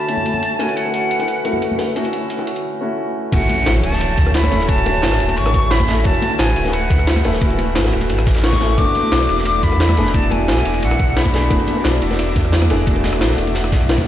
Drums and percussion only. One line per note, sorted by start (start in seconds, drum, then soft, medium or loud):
0.09 closed hi-hat medium
0.17 high conga medium
0.26 closed hi-hat medium
0.34 high conga medium
0.43 closed hi-hat medium
0.59 closed hi-hat medium
0.59 high bongo medium
0.69 closed hi-hat soft
0.77 closed hi-hat medium
0.85 high bongo medium
0.94 closed hi-hat medium
1.11 closed hi-hat medium
1.20 closed hi-hat soft
1.20 high bongo medium
1.28 closed hi-hat medium
1.45 closed hi-hat medium
1.45 high bongo medium
1.53 high conga medium
1.62 closed hi-hat medium
1.72 high conga medium
1.79 open hi-hat medium
1.79 high bongo medium
1.96 closed hi-hat medium
2.05 closed hi-hat soft
2.05 high bongo medium
2.13 closed hi-hat medium
2.30 closed hi-hat medium
2.39 high bongo medium
2.47 closed hi-hat medium
2.56 closed hi-hat soft
3.32 kick loud
3.32 closed hi-hat medium
3.32 crash loud
3.32 ride medium
3.32 high bongo soft
3.41 closed hi-hat soft
3.41 cabasa soft
3.49 closed hi-hat medium
3.49 ride medium
3.49 high conga medium
3.49 cabasa medium
3.66 snare loud
3.66 closed hi-hat medium
3.66 ride medium
3.66 high bongo medium
3.75 cabasa soft
3.83 closed hi-hat medium
3.83 ride medium
3.83 cabasa medium
3.92 snare soft
3.92 closed hi-hat soft
3.92 high bongo soft
3.92 high conga medium
4.01 cross-stick soft
4.01 closed hi-hat medium
4.01 ride loud
4.18 kick loud
4.18 snare soft
4.18 closed hi-hat medium
4.18 ride medium
4.18 cabasa medium
4.27 cross-stick soft
4.27 high bongo medium
4.34 snare loud
4.34 closed hi-hat medium
4.34 ride medium
4.43 cross-stick soft
4.43 high conga loud
4.51 open hi-hat medium
4.51 ride medium
4.51 high bongo soft
4.51 cabasa medium
4.60 snare soft
4.68 kick loud
4.68 closed hi-hat medium
4.68 ride medium
4.78 closed hi-hat soft
4.78 ride soft
4.78 cabasa soft
4.86 closed hi-hat medium
4.86 ride medium
4.86 high bongo medium
4.86 high conga medium
4.86 cabasa medium
5.02 snare loud
5.02 closed hi-hat medium
5.02 ride medium
5.12 cross-stick soft
5.12 snare soft
5.12 high bongo medium
5.12 cabasa soft
5.20 closed hi-hat medium
5.20 ride medium
5.20 cabasa medium
5.28 closed hi-hat soft
5.28 ride soft
5.28 high conga medium
5.37 closed hi-hat medium
5.37 ride medium
5.46 cross-stick medium
5.46 high bongo medium
5.54 kick loud
5.54 closed hi-hat medium
5.54 cabasa medium
5.71 snare loud
5.71 closed hi-hat medium
5.71 ride medium
5.71 high bongo medium
5.80 kick medium
5.80 high conga medium
5.88 snare loud
5.88 open hi-hat medium
5.88 ride medium
5.88 cabasa medium
6.04 kick loud
6.04 closed hi-hat medium
6.04 ride medium
6.04 high bongo medium
6.14 closed hi-hat soft
6.14 cabasa soft
6.22 closed hi-hat medium
6.22 ride medium
6.22 high conga loud
6.22 cabasa medium
6.31 high bongo medium
6.39 snare loud
6.39 closed hi-hat medium
6.39 ride medium
6.48 cabasa soft
6.56 closed hi-hat medium
6.56 ride medium
6.56 cabasa medium
6.65 snare soft
6.65 closed hi-hat soft
6.65 high bongo medium
6.65 high conga medium
6.73 cross-stick soft
6.73 closed hi-hat medium
6.73 ride medium
6.90 kick loud
6.90 snare soft
6.90 closed hi-hat medium
6.90 ride medium
6.90 high bongo medium
6.90 cabasa medium
6.99 cross-stick soft
7.07 snare loud
7.07 closed hi-hat medium
7.07 ride medium
7.16 cross-stick soft
7.16 high conga loud
7.24 open hi-hat medium
7.24 ride medium
7.24 high bongo medium
7.24 cabasa medium
7.33 snare soft
7.41 kick loud
7.41 closed hi-hat medium
7.41 ride medium
7.50 closed hi-hat soft
7.50 ride soft
7.50 high bongo soft
7.50 cabasa soft
7.58 closed hi-hat medium
7.58 ride medium
7.58 high conga loud
7.58 cabasa medium
7.75 snare loud
7.75 closed hi-hat medium
7.75 ride medium
7.85 cross-stick soft
7.85 snare medium
7.85 high bongo medium
7.85 cabasa soft
7.93 closed hi-hat medium
7.93 ride medium
7.93 cabasa medium
8.01 closed hi-hat soft
8.01 ride soft
8.01 high conga medium
8.10 closed hi-hat medium
8.10 ride loud
8.10 high bongo medium
8.19 cross-stick medium
8.27 kick loud
8.27 snare loud
8.27 closed hi-hat medium
8.27 ride medium
8.27 cabasa medium
8.35 snare loud
8.35 closed hi-hat soft
8.35 ride medium
8.43 snare loud
8.43 closed hi-hat medium
8.43 ride medium
8.43 high bongo medium
8.52 kick medium
8.52 snare loud
8.52 ride medium
8.52 high conga medium
8.60 snare soft
8.60 open hi-hat medium
8.60 ride medium
8.60 cabasa medium
8.70 high bongo medium
8.78 kick loud
8.78 closed hi-hat medium
8.78 ride medium
8.78 high bongo soft
8.87 closed hi-hat soft
8.87 cabasa soft
8.95 closed hi-hat medium
8.95 ride medium
8.95 high conga medium
8.95 cabasa medium
9.12 snare loud
9.12 closed hi-hat medium
9.12 ride medium
9.12 high bongo medium
9.21 cabasa soft
9.29 closed hi-hat medium
9.29 ride medium
9.29 cabasa medium
9.38 snare soft
9.38 closed hi-hat soft
9.38 high bongo soft
9.38 high conga medium
9.45 cross-stick soft
9.45 closed hi-hat medium
9.45 ride medium
9.63 kick loud
9.63 snare soft
9.63 closed hi-hat medium
9.63 ride medium
9.63 cabasa medium
9.72 cross-stick soft
9.72 high bongo medium
9.80 snare loud
9.80 closed hi-hat medium
9.80 ride medium
9.89 cross-stick soft
9.89 high conga medium
9.97 open hi-hat medium
9.97 ride medium
9.97 high bongo medium
9.97 cabasa medium
10.06 snare soft
10.14 kick loud
10.14 closed hi-hat medium
10.14 ride medium
10.23 closed hi-hat soft
10.23 ride soft
10.23 cabasa soft
10.31 closed hi-hat medium
10.31 ride medium
10.31 high bongo medium
10.31 high conga medium
10.31 cabasa medium
10.48 snare loud
10.48 closed hi-hat medium
10.48 ride loud
10.57 cross-stick soft
10.57 snare soft
10.57 high bongo soft
10.57 cabasa soft
10.65 closed hi-hat medium
10.65 ride medium
10.65 cabasa medium
10.74 closed hi-hat soft
10.74 ride soft
10.74 high conga medium
10.82 closed hi-hat medium
10.82 ride medium
10.91 cross-stick medium
10.91 high bongo medium
10.99 kick loud
10.99 closed hi-hat medium
10.99 cabasa medium
11.16 snare loud
11.16 closed hi-hat medium
11.16 ride medium
11.16 high bongo medium
11.25 kick medium
11.25 high conga medium
11.33 snare loud
11.33 open hi-hat medium
11.33 ride medium
11.33 cabasa medium
11.50 kick loud
11.50 closed hi-hat medium
11.50 ride medium
11.50 high bongo medium
11.60 closed hi-hat soft
11.60 cabasa soft
11.68 closed hi-hat medium
11.68 ride medium
11.68 high conga medium
11.68 cabasa medium
11.77 high bongo soft
11.84 snare loud
11.84 closed hi-hat medium
11.84 ride medium
11.94 cabasa soft
12.02 closed hi-hat medium
12.02 ride medium
12.02 cabasa medium
12.11 snare soft
12.11 closed hi-hat soft
12.11 high bongo medium
12.11 high conga medium
12.19 cross-stick soft
12.19 closed hi-hat medium
12.19 ride medium
12.36 kick loud
12.36 snare soft
12.36 closed hi-hat medium
12.36 ride medium
12.36 high bongo soft
12.36 cabasa medium
12.45 cross-stick soft
12.52 snare loud
12.52 closed hi-hat medium
12.52 ride medium
12.62 cross-stick soft
12.62 high conga medium
12.70 open hi-hat medium
12.70 ride medium
12.70 high bongo medium
12.70 cabasa medium
12.87 kick loud
12.87 closed hi-hat loud
12.87 ride medium
12.96 closed hi-hat soft
12.96 ride soft
12.96 high bongo medium
12.96 cabasa soft
13.04 snare loud
13.04 closed hi-hat medium
13.04 ride medium
13.04 high conga medium
13.04 cabasa medium
13.13 cross-stick medium
13.21 snare loud
13.21 closed hi-hat medium
13.21 ride loud
13.30 cross-stick soft
13.30 snare soft
13.30 high bongo medium
13.30 cabasa soft
13.38 closed hi-hat medium
13.38 ride medium
13.38 cabasa medium
13.47 closed hi-hat soft
13.47 ride soft
13.47 high conga medium
13.55 snare loud
13.55 closed hi-hat medium
13.55 ride medium
13.55 high bongo soft
13.64 cross-stick medium
13.72 kick loud
13.72 snare loud
13.72 closed hi-hat medium
13.72 ride medium
13.72 cabasa medium
13.81 cross-stick soft
13.81 closed hi-hat soft
13.89 snare loud
13.89 closed hi-hat loud
13.89 ride medium
13.89 high bongo medium
13.98 kick medium
13.98 snare soft
13.98 high conga loud